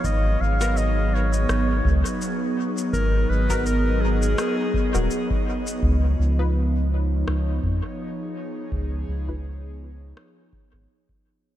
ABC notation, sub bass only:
X:1
M:4/4
L:1/16
Q:"Swing 16ths" 1/4=83
K:C#mix
V:1 name="Sub bass" clef=bass
G,,,2 G,,,6 G,,,2 C,, z4 z | G,,,2 G,,,6 z3 D,,, z4 | C,,2 C,,6 C,,2 E,, z4 z | C,,2 C,,6 z3 G,,, z4 |]